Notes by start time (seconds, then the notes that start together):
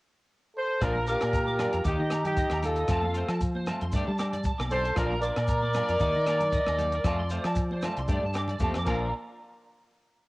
0.56 A4 C5
0.81 A#1 F3 A#3 D4 F4 A#4 D5, kick, cross-stick, closed hi-hat, low agogo, shekere
0.85 F4
0.95 A#5, high conga
1.07 A#3 D4 F4 G4 A#4 D6, closed hi-hat, shekere
1.11 F4
1.21 A#2 D5, cross-stick, closed hi-hat, low agogo
1.33 A#5, kick, closed hi-hat, shekere
1.47 D6, high conga
1.59 A#3 D4 F4 D5, cross-stick, closed hi-hat, low conga, low agogo, shekere
1.73 F2 A#5, closed hi-hat
1.84 D#2 D#3 A#3 D#4 G4 D6, kick, closed hi-hat, shekere
1.99 D#3 D#5
2.10 D#4 G4 A#5, muted clean electric guitar stroke, cross-stick, closed hi-hat, high conga, low agogo, shekere
2.25 D#4 G4, closed hi-hat, low conga
2.36 D#5, kick, closed hi-hat, shekere
2.50 D#2 A#5, cross-stick, high conga, low agogo
2.62 A#3 D#4 F4 G4 A4, closed hi-hat, low conga, shekere
2.76 D#5, closed hi-hat
2.88 F2 F3 A3 C4 F4 A5, kick, cross-stick, closed hi-hat, low agogo, shekere
3.02 F5, high conga
3.14 A3 C4 F4 C5, closed hi-hat, shekere
3.28 F3 A5, cross-stick, closed hi-hat, low agogo
3.40 kick, closed hi-hat, shekere
3.55 C5, high conga
3.66 A3 C4 F4 A5, cross-stick, closed hi-hat, low conga, low agogo, shekere
3.81 F2 C6, closed hi-hat
3.92 G2 A3 D4 G4 D5, kick, closed hi-hat, shekere
4.07 G3 A5
4.18 D4 G4 D6, cross-stick, closed hi-hat, high conga, low agogo, shekere
4.32 D5, closed hi-hat, low conga
4.43 A5, kick, closed hi-hat, shekere
4.58 B1 D6, cross-stick, high conga, low agogo
4.70 D4 G4 A4 C5 D5, closed hi-hat, low conga, shekere
4.84 A5, closed hi-hat
4.94 A#1 F3 A#3 D4 F4 A#4 D5, kick, cross-stick, closed hi-hat, low agogo, shekere
4.99 F4
5.10 A#5, high conga
5.21 F4 A#4 D5 D6, closed hi-hat, shekere
5.25 A#3 D4
5.36 A#2 D5, cross-stick, closed hi-hat, low agogo
5.48 A#5, kick, closed hi-hat, shekere
5.62 D6, high conga
5.74 A#3 D4 F4 D5, cross-stick, closed hi-hat, low conga, low agogo, shekere
5.89 F2 A#5, closed hi-hat
6.00 D#2 D#3 A#3 D#4 D6, muted clean electric guitar stroke, kick, closed hi-hat, shekere
6.15 D#3 D#5
6.26 A#3 D#4 G4 A#5, cross-stick, closed hi-hat, high conga, low agogo, shekere
6.41 closed hi-hat, low conga
6.52 D#5, kick, closed hi-hat, shekere
6.67 D#2 D#5, cross-stick, high conga, low agogo
6.79 A#3 D#4 G4, closed hi-hat, low conga, shekere
6.92 A#4, closed hi-hat
7.05 F2 F3 A3 C4 F4 A5, kick, cross-stick, closed hi-hat, low agogo, shekere
7.19 C6
7.30 A3 C4 F4 C5, closed hi-hat, shekere
7.44 F3 A5, cross-stick, closed hi-hat, low agogo
7.55 kick, closed hi-hat, shekere
7.71 C5, high conga
7.82 A3 C4 F4 A5, cross-stick, closed hi-hat, low conga, low agogo, shekere
7.97 C2 C6, closed hi-hat
8.08 G2 A3 D4 G4 D5, kick, closed hi-hat, shekere
8.23 G2 A5
8.33 D4 G4 D6, cross-stick, closed hi-hat, low agogo, shekere
8.48 D5, closed hi-hat, low conga
8.59 F2 F3 A3 C4 G4 A5, kick, closed hi-hat, high conga, shekere
8.74 F2 D6, cross-stick, low agogo
8.85 A#1 F3 A#3 D4 F4 A#4 F5 A#5, kick, crash, high conga, low agogo, shekere
8.90 D5